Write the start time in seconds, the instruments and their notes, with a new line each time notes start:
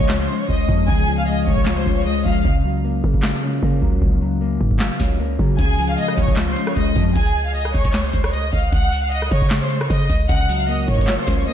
Already playing: 808-style bass C#2, clean electric guitar C#3 F3 G#3, violin section C#5 C#6
0.01 kick
0.09 clean electric guitar F4, snare, clap
0.20 violin section C5 C6
0.29 clean electric guitar C#4
0.40 violin section C#5 C#6
0.49 808-style bass C#2, clean electric guitar G#3, violin section D#5 D#6, kick
0.69 808-style bass F2, clean electric guitar F3, kick
0.88 808-style bass C#2, clean electric guitar C#3, violin section G#4 G#5, kick
1.08 clean electric guitar F3
1.18 violin section F5 F6
1.27 clean electric guitar G#3, violin section D#5 D#6
1.47 808-style bass C#2, violin section C#5 C#6, kick
1.57 kick
1.66 clean electric guitar F4, snare, clap
1.77 violin section C5 C6
1.86 808-style bass C#2, clean electric guitar C#4, kick
1.97 violin section C#5 C#6
2.06 clean electric guitar G#3, violin section D#5 D#6
2.25 808-style bass C#2, clean electric guitar F3, violin section F5 F6, kick
2.45 808-style bass C#2, clean electric guitar C#3, kick
2.65 clean electric guitar F#3
2.84 clean electric guitar A#3
3.04 808-style bass C#3, kick
3.14 kick
3.23 clean electric guitar F4, snare, clap
3.43 clean electric guitar C#4
3.63 808-style bass C#3, clean electric guitar A#3, kick
3.82 808-style bass C#2, clean electric guitar F#3, kick
4.02 808-style bass C#2, clean electric guitar C#3, kick
4.21 clean electric guitar F#3
4.41 clean electric guitar A#3
4.61 808-style bass G#2, kick
4.71 kick
4.79 clean electric guitar F4, snare, clap
5.00 808-style bass C#2, clean electric guitar C#4, kick, snare
5.19 clean electric guitar A#3
5.39 808-style bass C#3, clean electric guitar F#3, kick
5.59 808-style bass C#2, clean electric guitar C#3, violin section G#4 G#5, kick, closed hi-hat
5.79 clean electric guitar F3, open hi-hat
5.89 violin section F5 F6
5.98 clean electric guitar G#3, violin section D#5 D#6, closed hi-hat
6.08 cross-stick
6.18 808-style bass C#2, violin section C#5 C#6, kick, closed hi-hat
6.28 kick
6.36 clean electric guitar F4, snare, clap, closed hi-hat
6.47 violin section C5 C6
6.56 clean electric guitar C#4, closed hi-hat
6.67 violin section C#5 C#6, cross-stick
6.76 808-style bass C#2, clean electric guitar G#3, violin section D#5 D#6, kick, closed hi-hat
6.96 808-style bass F2, clean electric guitar F3, kick, closed hi-hat
7.16 808-style bass C#2, violin section G#4 G#5, kick, closed hi-hat
7.46 violin section F5 F6
7.55 violin section D#5 D#6, closed hi-hat
7.65 cross-stick
7.74 808-style bass C#2, violin section C#5 C#6, kick, closed hi-hat
7.85 kick, closed hi-hat
7.93 snare, clap, closed hi-hat
8.04 violin section C5 C6
8.13 808-style bass C#2, kick, closed hi-hat
8.24 violin section C#5 C#6, cross-stick
8.33 violin section D#5 D#6, closed hi-hat
8.53 808-style bass C#2, violin section F5 F6, kick
8.72 808-style bass C#2, violin section F#5 F#6, kick, closed hi-hat
8.92 open hi-hat
9.02 violin section F5 F6
9.11 violin section D#5 D#6, closed hi-hat
9.22 cross-stick
9.31 808-style bass C#3, violin section C#5 C#6, kick, closed hi-hat
9.42 kick
9.50 snare, clap, closed hi-hat
9.62 violin section C5 C6
9.70 closed hi-hat
9.81 violin section C#5 C#6, cross-stick
9.90 808-style bass C#3, violin section D#5 D#6, kick, closed hi-hat
10.09 808-style bass C#2, kick, closed hi-hat
10.29 808-style bass C#2, clean electric guitar C#3, violin section F#5 F#6, kick, closed hi-hat
10.49 clean electric guitar F#3, open hi-hat
10.59 violin section F5 F6
10.68 clean electric guitar A#3, violin section D#5 D#6, closed hi-hat
10.88 808-style bass G#2, violin section C#5 C#6, kick, closed hi-hat
10.95 kick, closed hi-hat
11.01 closed hi-hat
11.07 clean electric guitar F4, snare, clap, closed hi-hat
11.18 violin section C5 C6
11.27 808-style bass C#2, clean electric guitar C#4, kick, snare, closed hi-hat
11.38 violin section C#5 C#6
11.47 clean electric guitar A#3, violin section D#5 D#6